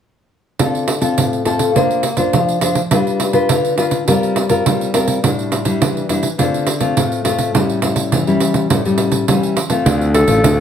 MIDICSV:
0, 0, Header, 1, 5, 480
1, 0, Start_track
1, 0, Key_signature, -1, "minor"
1, 0, Tempo, 578592
1, 499, Time_signature, 4, 2, 24, 8
1, 8795, End_track
2, 0, Start_track
2, 0, Title_t, "Clarinet"
2, 0, Program_c, 0, 71
2, 8416, Note_on_c, 0, 69, 70
2, 8795, Note_off_c, 0, 69, 0
2, 8795, End_track
3, 0, Start_track
3, 0, Title_t, "Nylon-string guitar"
3, 0, Program_c, 1, 24
3, 494, Note_on_c, 1, 50, 52
3, 495, Note_on_c, 1, 60, 38
3, 497, Note_on_c, 1, 65, 42
3, 501, Note_on_c, 1, 69, 39
3, 722, Note_off_c, 1, 60, 0
3, 724, Note_off_c, 1, 65, 0
3, 724, Note_off_c, 1, 69, 0
3, 838, Note_on_c, 1, 60, 48
3, 842, Note_on_c, 1, 65, 43
3, 845, Note_on_c, 1, 69, 49
3, 953, Note_off_c, 1, 50, 0
3, 974, Note_on_c, 1, 45, 53
3, 1171, Note_off_c, 1, 60, 0
3, 1172, Note_off_c, 1, 65, 0
3, 1174, Note_off_c, 1, 69, 0
3, 1207, Note_on_c, 1, 60, 41
3, 1211, Note_on_c, 1, 65, 43
3, 1214, Note_on_c, 1, 69, 53
3, 1415, Note_off_c, 1, 60, 0
3, 1417, Note_off_c, 1, 65, 0
3, 1419, Note_off_c, 1, 69, 0
3, 1433, Note_off_c, 1, 45, 0
3, 1454, Note_on_c, 1, 58, 60
3, 1456, Note_on_c, 1, 62, 47
3, 1460, Note_on_c, 1, 72, 49
3, 1463, Note_on_c, 1, 65, 50
3, 1683, Note_off_c, 1, 62, 0
3, 1684, Note_off_c, 1, 65, 0
3, 1685, Note_off_c, 1, 72, 0
3, 1806, Note_on_c, 1, 62, 57
3, 1810, Note_on_c, 1, 72, 52
3, 1811, Note_on_c, 1, 65, 49
3, 1914, Note_off_c, 1, 58, 0
3, 1939, Note_on_c, 1, 53, 54
3, 2135, Note_off_c, 1, 62, 0
3, 2136, Note_off_c, 1, 65, 0
3, 2137, Note_off_c, 1, 72, 0
3, 2174, Note_on_c, 1, 62, 45
3, 2179, Note_on_c, 1, 65, 47
3, 2180, Note_on_c, 1, 72, 49
3, 2319, Note_off_c, 1, 62, 0
3, 2319, Note_off_c, 1, 65, 0
3, 2321, Note_off_c, 1, 72, 0
3, 2396, Note_off_c, 1, 53, 0
3, 2419, Note_on_c, 1, 55, 53
3, 2422, Note_on_c, 1, 62, 43
3, 2423, Note_on_c, 1, 65, 44
3, 2428, Note_on_c, 1, 71, 43
3, 2742, Note_off_c, 1, 62, 0
3, 2744, Note_off_c, 1, 65, 0
3, 2746, Note_off_c, 1, 71, 0
3, 2764, Note_on_c, 1, 62, 47
3, 2769, Note_on_c, 1, 65, 54
3, 2772, Note_on_c, 1, 71, 56
3, 2877, Note_off_c, 1, 55, 0
3, 2903, Note_on_c, 1, 50, 58
3, 3095, Note_off_c, 1, 62, 0
3, 3096, Note_off_c, 1, 65, 0
3, 3098, Note_off_c, 1, 71, 0
3, 3134, Note_on_c, 1, 62, 44
3, 3138, Note_on_c, 1, 65, 51
3, 3141, Note_on_c, 1, 71, 48
3, 3339, Note_off_c, 1, 62, 0
3, 3341, Note_off_c, 1, 65, 0
3, 3343, Note_off_c, 1, 71, 0
3, 3358, Note_off_c, 1, 50, 0
3, 3379, Note_on_c, 1, 55, 66
3, 3382, Note_on_c, 1, 60, 47
3, 3382, Note_on_c, 1, 65, 55
3, 3389, Note_on_c, 1, 70, 52
3, 3703, Note_off_c, 1, 60, 0
3, 3704, Note_off_c, 1, 65, 0
3, 3706, Note_off_c, 1, 70, 0
3, 3724, Note_on_c, 1, 60, 50
3, 3731, Note_on_c, 1, 65, 51
3, 3732, Note_on_c, 1, 70, 61
3, 3837, Note_off_c, 1, 55, 0
3, 3864, Note_on_c, 1, 55, 59
3, 4056, Note_off_c, 1, 60, 0
3, 4057, Note_off_c, 1, 65, 0
3, 4059, Note_off_c, 1, 70, 0
3, 4096, Note_on_c, 1, 60, 45
3, 4100, Note_on_c, 1, 65, 48
3, 4102, Note_on_c, 1, 70, 53
3, 4301, Note_off_c, 1, 60, 0
3, 4303, Note_off_c, 1, 65, 0
3, 4303, Note_off_c, 1, 70, 0
3, 4319, Note_off_c, 1, 55, 0
3, 4341, Note_on_c, 1, 45, 50
3, 4343, Note_on_c, 1, 55, 44
3, 4345, Note_on_c, 1, 62, 41
3, 4348, Note_on_c, 1, 64, 45
3, 4664, Note_off_c, 1, 55, 0
3, 4665, Note_off_c, 1, 62, 0
3, 4667, Note_off_c, 1, 64, 0
3, 4685, Note_on_c, 1, 55, 55
3, 4689, Note_on_c, 1, 62, 47
3, 4693, Note_on_c, 1, 64, 57
3, 4798, Note_off_c, 1, 45, 0
3, 4821, Note_on_c, 1, 52, 64
3, 5016, Note_off_c, 1, 55, 0
3, 5018, Note_off_c, 1, 62, 0
3, 5020, Note_off_c, 1, 64, 0
3, 5054, Note_on_c, 1, 55, 44
3, 5057, Note_on_c, 1, 62, 53
3, 5064, Note_on_c, 1, 64, 50
3, 5200, Note_off_c, 1, 55, 0
3, 5201, Note_off_c, 1, 62, 0
3, 5203, Note_off_c, 1, 64, 0
3, 5278, Note_off_c, 1, 52, 0
3, 5295, Note_on_c, 1, 50, 60
3, 5299, Note_on_c, 1, 57, 46
3, 5304, Note_on_c, 1, 65, 53
3, 5305, Note_on_c, 1, 60, 55
3, 5525, Note_off_c, 1, 57, 0
3, 5527, Note_off_c, 1, 60, 0
3, 5529, Note_off_c, 1, 65, 0
3, 5642, Note_on_c, 1, 57, 53
3, 5646, Note_on_c, 1, 60, 59
3, 5650, Note_on_c, 1, 65, 57
3, 5756, Note_off_c, 1, 50, 0
3, 5778, Note_on_c, 1, 45, 58
3, 5974, Note_off_c, 1, 57, 0
3, 5976, Note_off_c, 1, 60, 0
3, 5978, Note_off_c, 1, 65, 0
3, 6009, Note_on_c, 1, 57, 47
3, 6015, Note_on_c, 1, 60, 43
3, 6018, Note_on_c, 1, 65, 56
3, 6218, Note_off_c, 1, 57, 0
3, 6220, Note_off_c, 1, 60, 0
3, 6222, Note_off_c, 1, 65, 0
3, 6237, Note_off_c, 1, 45, 0
3, 6256, Note_on_c, 1, 45, 58
3, 6259, Note_on_c, 1, 55, 39
3, 6260, Note_on_c, 1, 61, 38
3, 6265, Note_on_c, 1, 64, 50
3, 6462, Note_off_c, 1, 55, 0
3, 6463, Note_off_c, 1, 61, 0
3, 6465, Note_off_c, 1, 64, 0
3, 6496, Note_on_c, 1, 55, 42
3, 6500, Note_on_c, 1, 61, 43
3, 6502, Note_on_c, 1, 64, 52
3, 6716, Note_off_c, 1, 45, 0
3, 6742, Note_on_c, 1, 52, 57
3, 6821, Note_off_c, 1, 55, 0
3, 6823, Note_off_c, 1, 61, 0
3, 6824, Note_off_c, 1, 64, 0
3, 6862, Note_on_c, 1, 55, 50
3, 6867, Note_on_c, 1, 61, 56
3, 6871, Note_on_c, 1, 64, 57
3, 7184, Note_off_c, 1, 55, 0
3, 7187, Note_off_c, 1, 61, 0
3, 7188, Note_off_c, 1, 64, 0
3, 7199, Note_off_c, 1, 52, 0
3, 7219, Note_on_c, 1, 45, 61
3, 7221, Note_on_c, 1, 55, 49
3, 7222, Note_on_c, 1, 61, 51
3, 7227, Note_on_c, 1, 64, 49
3, 7303, Note_off_c, 1, 55, 0
3, 7305, Note_off_c, 1, 61, 0
3, 7306, Note_off_c, 1, 64, 0
3, 7345, Note_on_c, 1, 55, 49
3, 7348, Note_on_c, 1, 61, 52
3, 7354, Note_on_c, 1, 64, 59
3, 7666, Note_off_c, 1, 55, 0
3, 7668, Note_off_c, 1, 61, 0
3, 7669, Note_off_c, 1, 64, 0
3, 7677, Note_off_c, 1, 45, 0
3, 7699, Note_on_c, 1, 52, 57
3, 7703, Note_on_c, 1, 55, 47
3, 7703, Note_on_c, 1, 61, 42
3, 7707, Note_on_c, 1, 64, 51
3, 7927, Note_off_c, 1, 55, 0
3, 7928, Note_off_c, 1, 61, 0
3, 7930, Note_off_c, 1, 64, 0
3, 8046, Note_on_c, 1, 57, 47
3, 8050, Note_on_c, 1, 60, 52
3, 8055, Note_on_c, 1, 65, 49
3, 8157, Note_off_c, 1, 52, 0
3, 8183, Note_on_c, 1, 50, 48
3, 8376, Note_off_c, 1, 57, 0
3, 8378, Note_off_c, 1, 60, 0
3, 8379, Note_off_c, 1, 65, 0
3, 8524, Note_on_c, 1, 57, 57
3, 8532, Note_on_c, 1, 60, 54
3, 8533, Note_on_c, 1, 65, 58
3, 8639, Note_off_c, 1, 50, 0
3, 8659, Note_on_c, 1, 45, 49
3, 8795, Note_off_c, 1, 45, 0
3, 8795, Note_off_c, 1, 57, 0
3, 8795, Note_off_c, 1, 60, 0
3, 8795, Note_off_c, 1, 65, 0
3, 8795, End_track
4, 0, Start_track
4, 0, Title_t, "Fingered electric bass"
4, 0, Program_c, 2, 33
4, 8179, Note_on_c, 2, 38, 98
4, 8486, Note_off_c, 2, 38, 0
4, 8524, Note_on_c, 2, 33, 70
4, 8634, Note_off_c, 2, 33, 0
4, 8659, Note_on_c, 2, 38, 92
4, 8795, Note_off_c, 2, 38, 0
4, 8795, End_track
5, 0, Start_track
5, 0, Title_t, "Pandeiro"
5, 493, Note_on_c, 9, 54, 67
5, 576, Note_off_c, 9, 54, 0
5, 621, Note_on_c, 9, 54, 25
5, 704, Note_off_c, 9, 54, 0
5, 727, Note_on_c, 9, 54, 61
5, 810, Note_off_c, 9, 54, 0
5, 843, Note_on_c, 9, 54, 45
5, 926, Note_off_c, 9, 54, 0
5, 977, Note_on_c, 9, 54, 67
5, 1059, Note_off_c, 9, 54, 0
5, 1103, Note_on_c, 9, 54, 23
5, 1186, Note_off_c, 9, 54, 0
5, 1206, Note_on_c, 9, 54, 48
5, 1289, Note_off_c, 9, 54, 0
5, 1321, Note_on_c, 9, 54, 46
5, 1404, Note_off_c, 9, 54, 0
5, 1459, Note_on_c, 9, 54, 62
5, 1542, Note_off_c, 9, 54, 0
5, 1582, Note_on_c, 9, 54, 29
5, 1665, Note_off_c, 9, 54, 0
5, 1684, Note_on_c, 9, 54, 53
5, 1767, Note_off_c, 9, 54, 0
5, 1798, Note_on_c, 9, 54, 48
5, 1881, Note_off_c, 9, 54, 0
5, 1935, Note_on_c, 9, 54, 67
5, 2018, Note_off_c, 9, 54, 0
5, 2062, Note_on_c, 9, 54, 29
5, 2145, Note_off_c, 9, 54, 0
5, 2168, Note_on_c, 9, 54, 63
5, 2251, Note_off_c, 9, 54, 0
5, 2284, Note_on_c, 9, 54, 46
5, 2367, Note_off_c, 9, 54, 0
5, 2415, Note_on_c, 9, 54, 73
5, 2498, Note_off_c, 9, 54, 0
5, 2546, Note_on_c, 9, 54, 24
5, 2629, Note_off_c, 9, 54, 0
5, 2653, Note_on_c, 9, 54, 57
5, 2736, Note_off_c, 9, 54, 0
5, 2765, Note_on_c, 9, 54, 48
5, 2848, Note_off_c, 9, 54, 0
5, 2897, Note_on_c, 9, 54, 73
5, 2980, Note_off_c, 9, 54, 0
5, 3025, Note_on_c, 9, 54, 26
5, 3108, Note_off_c, 9, 54, 0
5, 3132, Note_on_c, 9, 54, 51
5, 3215, Note_off_c, 9, 54, 0
5, 3245, Note_on_c, 9, 54, 46
5, 3328, Note_off_c, 9, 54, 0
5, 3382, Note_on_c, 9, 54, 63
5, 3465, Note_off_c, 9, 54, 0
5, 3510, Note_on_c, 9, 54, 30
5, 3593, Note_off_c, 9, 54, 0
5, 3616, Note_on_c, 9, 54, 55
5, 3699, Note_off_c, 9, 54, 0
5, 3728, Note_on_c, 9, 54, 46
5, 3811, Note_off_c, 9, 54, 0
5, 3867, Note_on_c, 9, 54, 70
5, 3950, Note_off_c, 9, 54, 0
5, 3992, Note_on_c, 9, 54, 29
5, 4075, Note_off_c, 9, 54, 0
5, 4098, Note_on_c, 9, 54, 59
5, 4181, Note_off_c, 9, 54, 0
5, 4210, Note_on_c, 9, 54, 47
5, 4293, Note_off_c, 9, 54, 0
5, 4345, Note_on_c, 9, 54, 74
5, 4428, Note_off_c, 9, 54, 0
5, 4470, Note_on_c, 9, 54, 27
5, 4553, Note_off_c, 9, 54, 0
5, 4578, Note_on_c, 9, 54, 57
5, 4661, Note_off_c, 9, 54, 0
5, 4689, Note_on_c, 9, 54, 51
5, 4772, Note_off_c, 9, 54, 0
5, 4825, Note_on_c, 9, 54, 75
5, 4908, Note_off_c, 9, 54, 0
5, 4952, Note_on_c, 9, 54, 26
5, 5035, Note_off_c, 9, 54, 0
5, 5055, Note_on_c, 9, 54, 53
5, 5138, Note_off_c, 9, 54, 0
5, 5167, Note_on_c, 9, 54, 45
5, 5249, Note_off_c, 9, 54, 0
5, 5300, Note_on_c, 9, 54, 59
5, 5383, Note_off_c, 9, 54, 0
5, 5428, Note_on_c, 9, 54, 29
5, 5511, Note_off_c, 9, 54, 0
5, 5530, Note_on_c, 9, 54, 56
5, 5613, Note_off_c, 9, 54, 0
5, 5645, Note_on_c, 9, 54, 48
5, 5728, Note_off_c, 9, 54, 0
5, 5781, Note_on_c, 9, 54, 64
5, 5864, Note_off_c, 9, 54, 0
5, 5906, Note_on_c, 9, 54, 28
5, 5989, Note_off_c, 9, 54, 0
5, 6014, Note_on_c, 9, 54, 58
5, 6097, Note_off_c, 9, 54, 0
5, 6127, Note_on_c, 9, 54, 45
5, 6209, Note_off_c, 9, 54, 0
5, 6261, Note_on_c, 9, 54, 74
5, 6344, Note_off_c, 9, 54, 0
5, 6384, Note_on_c, 9, 54, 27
5, 6467, Note_off_c, 9, 54, 0
5, 6488, Note_on_c, 9, 54, 65
5, 6571, Note_off_c, 9, 54, 0
5, 6603, Note_on_c, 9, 54, 49
5, 6686, Note_off_c, 9, 54, 0
5, 6737, Note_on_c, 9, 54, 67
5, 6820, Note_off_c, 9, 54, 0
5, 6864, Note_on_c, 9, 54, 25
5, 6947, Note_off_c, 9, 54, 0
5, 6972, Note_on_c, 9, 54, 52
5, 7055, Note_off_c, 9, 54, 0
5, 7086, Note_on_c, 9, 54, 49
5, 7169, Note_off_c, 9, 54, 0
5, 7220, Note_on_c, 9, 54, 69
5, 7303, Note_off_c, 9, 54, 0
5, 7345, Note_on_c, 9, 54, 28
5, 7428, Note_off_c, 9, 54, 0
5, 7447, Note_on_c, 9, 54, 56
5, 7530, Note_off_c, 9, 54, 0
5, 7563, Note_on_c, 9, 54, 50
5, 7646, Note_off_c, 9, 54, 0
5, 7700, Note_on_c, 9, 54, 67
5, 7783, Note_off_c, 9, 54, 0
5, 7826, Note_on_c, 9, 54, 31
5, 7909, Note_off_c, 9, 54, 0
5, 7936, Note_on_c, 9, 54, 59
5, 8019, Note_off_c, 9, 54, 0
5, 8045, Note_on_c, 9, 54, 49
5, 8128, Note_off_c, 9, 54, 0
5, 8181, Note_on_c, 9, 54, 78
5, 8263, Note_off_c, 9, 54, 0
5, 8307, Note_on_c, 9, 54, 30
5, 8390, Note_off_c, 9, 54, 0
5, 8416, Note_on_c, 9, 54, 65
5, 8499, Note_off_c, 9, 54, 0
5, 8525, Note_on_c, 9, 54, 53
5, 8608, Note_off_c, 9, 54, 0
5, 8662, Note_on_c, 9, 54, 85
5, 8745, Note_off_c, 9, 54, 0
5, 8795, End_track
0, 0, End_of_file